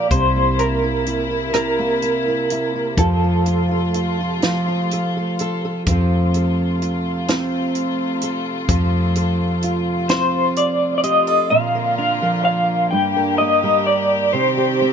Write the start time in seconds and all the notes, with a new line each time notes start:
Already playing: A#3 D5
0.10 C2 C3 E4 C5, kick, closed hi-hat
0.36 A#3
0.59 E4 A#4, closed hi-hat
0.84 E4
1.06 E4, closed hi-hat
1.31 E4
1.54 C3 A#4, cross-stick, closed hi-hat
1.79 A#3
2.02 E4, closed hi-hat
2.28 E4
2.50 E4, closed hi-hat
2.75 E4
2.97 F2 F3 A3 F4 A4, kick, closed hi-hat
3.24 F4
3.46 F4, closed hi-hat
3.71 F4
3.94 F4, closed hi-hat
4.21 F4
4.42 F3, snare, closed hi-hat
4.68 F4
4.91 A4, closed hi-hat
5.17 A4
5.39 A4, closed hi-hat
5.65 A4
5.86 F2 C3 F3 A3 C4 F4, kick, closed hi-hat
5.91 A4
6.34 A4, closed hi-hat
6.82 F4, closed hi-hat
7.28 C4, snare, closed hi-hat
7.75 closed hi-hat
8.22 A4, closed hi-hat
8.69 F2 F3 A4, kick, closed hi-hat
9.15 A4, closed hi-hat
9.63 F4, closed hi-hat
10.09 C4 C5, snare, closed hi-hat
10.56 D5, closed hi-hat
10.98 D5
11.03 G4 D#5, closed hi-hat
11.27 A4
11.50 A#2 D3 A#3 F4 F5
11.75 A#4
11.98 D4 F5
12.22 F3 A#4
12.45 F5
12.91 G2 G5
12.95 D3 G4
13.17 A#4
13.38 A#3 D#5
13.63 G3 A#4
13.87 D5
14.33 C3 D#3 C4 C5
14.57 G4
14.82 C4